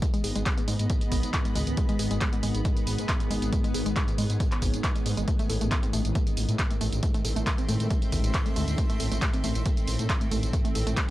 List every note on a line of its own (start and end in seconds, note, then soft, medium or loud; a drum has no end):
0.00 11.10 G#2 medium
0.00 11.10 D#3 medium
0.00 0.08 G#3 medium
0.00 5.28 B3 loud
0.00 5.28 G#4 medium
0.00 2.81 D#5 medium
0.00 5.28 B5 medium
0.00 kick loud
0.00 closed hi-hat medium
0.00 tambourine soft
0.14 0.22 G#3 loud
0.14 closed hi-hat medium
0.14 tambourine soft
0.24 0.32 G#1 medium
0.24 0.33 G#4 medium
0.24 open hi-hat loud
0.24 tambourine medium
0.36 0.43 G#1 medium
0.36 0.41 G#3 loud
0.36 closed hi-hat medium
0.36 tambourine soft
0.46 0.52 G#3 medium
0.46 kick loud
0.46 clap loud
0.46 closed hi-hat medium
0.46 tambourine soft
0.57 0.63 B3 medium
0.57 closed hi-hat medium
0.57 tambourine soft
0.68 0.76 G#2 medium
0.68 0.74 G#3 loud
0.68 open hi-hat loud
0.68 tambourine medium
0.79 0.87 G#2 medium
0.79 closed hi-hat medium
0.79 tambourine soft
0.90 0.96 G#3 medium
0.90 kick loud
0.90 closed hi-hat medium
0.90 tambourine soft
1.01 closed hi-hat medium
1.01 tambourine soft
1.12 1.20 G#1 loud
1.12 kick medium
1.12 open hi-hat loud
1.12 tambourine medium
1.23 1.31 G#1 medium
1.23 closed hi-hat medium
1.23 tambourine soft
1.34 kick loud
1.34 clap loud
1.34 closed hi-hat medium
1.34 tambourine soft
1.45 1.51 G#3 medium
1.45 closed hi-hat medium
1.45 tambourine soft
1.55 1.64 C#2 medium
1.55 1.59 G#3 loud
1.55 open hi-hat loud
1.55 tambourine medium
1.67 1.74 C#2 medium
1.67 closed hi-hat medium
1.67 tambourine soft
1.77 1.83 G#3 medium
1.77 kick loud
1.77 closed hi-hat medium
1.77 tambourine soft
1.89 1.97 G#3 loud
1.89 closed hi-hat medium
1.89 tambourine soft
1.99 2.08 G#1 medium
1.99 2.08 G#4 medium
1.99 open hi-hat loud
1.99 tambourine medium
2.11 2.18 G#1 medium
2.11 2.16 G#3 loud
2.11 closed hi-hat medium
2.11 tambourine soft
2.21 2.27 G#3 medium
2.21 kick loud
2.21 clap loud
2.21 closed hi-hat medium
2.21 tambourine soft
2.33 2.38 B3 medium
2.33 closed hi-hat medium
2.33 tambourine soft
2.43 2.51 G#1 medium
2.43 2.49 G#3 medium
2.43 open hi-hat loud
2.43 tambourine medium
2.55 2.62 G#1 medium
2.55 closed hi-hat medium
2.55 tambourine soft
2.65 2.71 G#3 medium
2.65 5.28 C#5 medium
2.65 kick loud
2.65 closed hi-hat medium
2.65 tambourine soft
2.77 closed hi-hat medium
2.77 tambourine soft
2.87 2.95 G#1 loud
2.87 open hi-hat loud
2.87 tambourine medium
2.98 3.06 G#2 medium
2.98 closed hi-hat medium
2.98 tambourine soft
3.09 kick loud
3.09 clap loud
3.09 closed hi-hat medium
3.09 tambourine soft
3.20 3.26 G#3 medium
3.20 closed hi-hat medium
3.20 tambourine soft
3.31 3.39 G#1 loud
3.31 3.34 G#3 loud
3.31 open hi-hat loud
3.31 tambourine medium
3.42 3.50 G#1 medium
3.42 closed hi-hat medium
3.42 tambourine soft
3.52 3.58 G#3 medium
3.52 kick loud
3.52 closed hi-hat medium
3.52 tambourine soft
3.64 3.72 G#3 loud
3.64 closed hi-hat medium
3.64 tambourine soft
3.74 3.83 G#1 medium
3.74 3.83 G#4 medium
3.74 open hi-hat loud
3.74 tambourine medium
3.86 3.93 G#1 medium
3.86 3.91 G#3 loud
3.86 closed hi-hat medium
3.86 tambourine soft
3.96 4.02 G#3 medium
3.96 kick loud
3.96 clap loud
3.96 closed hi-hat medium
3.96 tambourine soft
4.08 4.13 B3 medium
4.08 closed hi-hat medium
4.08 tambourine soft
4.18 4.26 G#2 medium
4.18 4.24 G#3 loud
4.18 open hi-hat loud
4.18 tambourine medium
4.30 4.37 G#2 medium
4.30 closed hi-hat medium
4.30 tambourine soft
4.40 4.46 G#3 medium
4.40 kick loud
4.40 closed hi-hat medium
4.40 tambourine soft
4.52 clap medium
4.52 closed hi-hat medium
4.52 tambourine soft
4.62 4.70 G#1 loud
4.62 kick medium
4.62 open hi-hat loud
4.62 tambourine medium
4.73 4.81 G#1 medium
4.73 closed hi-hat medium
4.73 tambourine soft
4.84 kick loud
4.84 clap loud
4.84 closed hi-hat medium
4.84 tambourine soft
4.95 5.01 G#3 medium
4.95 closed hi-hat medium
4.95 tambourine soft
5.06 5.14 G#2 medium
5.06 5.12 G#3 medium
5.06 open hi-hat loud
5.06 tambourine medium
5.17 5.25 G#1 medium
5.17 5.25 G#3 loud
5.17 closed hi-hat soft
5.17 tambourine soft
5.28 5.34 A3 medium
5.28 11.10 C4 loud
5.28 kick loud
5.28 closed hi-hat medium
5.28 tambourine soft
5.39 5.47 A3 loud
5.39 11.10 A4 medium
5.39 closed hi-hat medium
5.39 tambourine soft
5.50 5.58 A1 medium
5.50 5.59 A4 medium
5.50 open hi-hat loud
5.50 tambourine medium
5.61 5.68 A1 medium
5.61 5.67 A3 medium
5.61 closed hi-hat medium
5.61 tambourine soft
5.71 5.77 A3 medium
5.71 kick loud
5.71 clap loud
5.71 closed hi-hat medium
5.71 tambourine soft
5.76 11.10 E5 medium
5.83 5.88 C4 medium
5.83 closed hi-hat medium
5.83 tambourine soft
5.93 6.02 A1 medium
5.93 5.99 A3 loud
5.93 11.10 C6 medium
5.93 open hi-hat loud
5.93 tambourine medium
6.05 6.12 A1 medium
6.05 closed hi-hat soft
6.05 tambourine soft
6.15 6.21 A3 medium
6.15 kick loud
6.15 closed hi-hat medium
6.15 tambourine soft
6.27 closed hi-hat medium
6.27 tambourine soft
6.37 6.45 A1 loud
6.37 open hi-hat loud
6.37 tambourine medium
6.49 6.56 A2 medium
6.49 closed hi-hat medium
6.49 tambourine soft
6.59 kick loud
6.59 clap loud
6.59 closed hi-hat medium
6.59 tambourine soft
6.71 6.76 A3 medium
6.71 closed hi-hat medium
6.71 tambourine soft
6.81 6.89 A1 medium
6.81 6.85 A3 loud
6.81 open hi-hat loud
6.81 tambourine medium
6.93 7.00 A1 medium
6.93 closed hi-hat soft
6.93 tambourine soft
7.03 7.09 A3 medium
7.03 kick loud
7.03 closed hi-hat medium
7.03 tambourine soft
7.14 7.22 A3 loud
7.14 closed hi-hat medium
7.14 tambourine soft
7.25 7.33 A1 loud
7.25 7.34 A4 medium
7.25 open hi-hat loud
7.25 tambourine medium
7.36 7.44 A1 medium
7.36 7.42 A3 loud
7.36 closed hi-hat soft
7.36 tambourine soft
7.47 7.53 A3 medium
7.47 kick loud
7.47 clap loud
7.47 closed hi-hat medium
7.47 tambourine soft
7.58 7.64 C4 medium
7.58 closed hi-hat medium
7.58 tambourine soft
7.69 7.77 A2 loud
7.69 7.75 A3 loud
7.69 open hi-hat loud
7.69 tambourine medium
7.80 7.88 A2 medium
7.80 closed hi-hat medium
7.80 tambourine soft
7.90 7.96 A3 medium
7.90 kick loud
7.90 closed hi-hat medium
7.90 tambourine soft
8.02 closed hi-hat soft
8.02 tambourine soft
8.12 8.21 A1 loud
8.12 kick medium
8.12 open hi-hat loud
8.12 tambourine medium
8.24 8.31 A1 medium
8.24 closed hi-hat soft
8.24 tambourine soft
8.34 kick loud
8.34 clap loud
8.34 closed hi-hat medium
8.34 tambourine soft
8.46 8.51 A3 medium
8.46 closed hi-hat medium
8.46 tambourine soft
8.56 8.64 D2 medium
8.56 8.60 A3 loud
8.56 open hi-hat loud
8.56 tambourine medium
8.68 8.75 D2 medium
8.68 closed hi-hat soft
8.68 tambourine soft
8.78 8.84 A3 medium
8.78 kick loud
8.78 closed hi-hat medium
8.78 tambourine soft
8.90 8.98 A3 loud
8.90 closed hi-hat medium
8.90 tambourine soft
9.00 9.08 A1 medium
9.00 9.09 A4 medium
9.00 open hi-hat loud
9.00 tambourine medium
9.12 9.19 A1 medium
9.12 9.17 A3 loud
9.12 closed hi-hat medium
9.12 tambourine soft
9.22 9.28 A3 medium
9.22 kick loud
9.22 clap loud
9.22 closed hi-hat medium
9.22 tambourine soft
9.34 9.39 C4 medium
9.34 closed hi-hat medium
9.34 tambourine soft
9.44 9.52 A1 medium
9.44 9.50 A3 medium
9.44 open hi-hat loud
9.44 tambourine medium
9.55 9.63 A1 medium
9.55 closed hi-hat medium
9.55 tambourine soft
9.66 9.72 A3 medium
9.66 kick loud
9.66 closed hi-hat medium
9.66 tambourine soft
9.77 closed hi-hat medium
9.77 tambourine soft
9.87 9.96 A1 loud
9.87 open hi-hat loud
9.87 tambourine medium
9.99 10.07 A2 medium
9.99 closed hi-hat medium
9.99 tambourine soft
10.10 kick loud
10.10 clap loud
10.10 closed hi-hat medium
10.10 tambourine soft
10.21 10.26 A3 medium
10.21 closed hi-hat medium
10.21 tambourine soft
10.31 10.40 A1 medium
10.31 10.35 A3 loud
10.31 open hi-hat medium
10.31 tambourine medium
10.43 10.50 A1 medium
10.43 closed hi-hat medium
10.43 tambourine soft
10.53 10.59 A3 medium
10.53 kick loud
10.53 closed hi-hat medium
10.53 tambourine soft
10.65 10.73 A3 loud
10.65 closed hi-hat medium
10.65 tambourine soft
10.75 10.83 A1 loud
10.75 10.84 A4 medium
10.75 open hi-hat loud
10.75 tambourine medium
10.87 10.94 A1 medium
10.87 10.92 A3 loud
10.87 closed hi-hat medium
10.87 tambourine soft
10.97 11.03 A3 medium
10.97 kick loud
10.97 clap loud
10.97 closed hi-hat medium
10.97 tambourine soft